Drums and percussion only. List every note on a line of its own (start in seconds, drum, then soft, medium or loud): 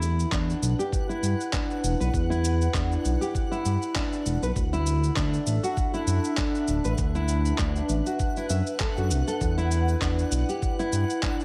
0.02 shaker medium
0.20 shaker soft
0.32 kick loud
0.32 clap medium
0.32 shaker soft
0.50 shaker soft
0.63 shaker medium
0.80 shaker soft
0.92 kick medium
0.92 shaker soft
1.10 shaker soft
1.23 shaker medium
1.40 shaker soft
1.53 kick loud
1.53 clap medium
1.53 shaker soft
1.71 shaker soft
1.84 shaker medium
2.01 shaker soft
2.14 kick loud
2.14 shaker soft
2.31 shaker soft
2.44 shaker medium
2.61 shaker soft
2.74 kick loud
2.74 clap medium
2.74 shaker soft
2.92 shaker soft
3.05 shaker medium
3.22 shaker soft
3.35 kick medium
3.35 shaker soft
3.52 shaker soft
3.65 shaker medium
3.82 shaker soft
3.95 kick loud
3.95 clap loud
3.95 shaker soft
4.13 shaker soft
4.26 shaker medium
4.43 shaker soft
4.56 kick loud
4.56 shaker soft
4.73 shaker soft
4.86 shaker medium
5.03 shaker soft
5.16 kick loud
5.16 clap medium
5.16 shaker soft
5.33 shaker soft
5.47 shaker medium
5.64 shaker soft
5.77 kick loud
5.77 shaker soft
5.94 shaker soft
6.07 shaker medium
6.24 shaker soft
6.37 kick loud
6.37 clap medium
6.37 shaker soft
6.55 shaker soft
6.68 shaker medium
6.84 shaker soft
6.98 kick loud
6.98 shaker soft
7.15 shaker soft
7.28 shaker medium
7.45 shaker soft
7.58 kick loud
7.58 clap medium
7.58 shaker soft
7.76 shaker soft
7.89 shaker medium
8.06 shaker soft
8.19 kick medium
8.19 shaker soft
8.36 shaker soft
8.49 shaker medium
8.66 shaker soft
8.80 kick loud
8.80 clap loud
8.80 shaker soft
8.97 shaker soft
9.11 shaker medium
9.28 shaker soft
9.41 kick loud
9.41 shaker soft
9.58 shaker soft
9.71 shaker medium
9.88 shaker soft
10.02 kick medium
10.02 clap medium
10.02 shaker soft
10.19 shaker soft
10.32 shaker medium
10.49 shaker soft
10.62 kick medium
10.62 shaker soft
10.79 shaker soft
10.93 shaker medium
11.10 shaker soft
11.23 kick loud
11.23 clap medium
11.23 shaker soft
11.40 shaker soft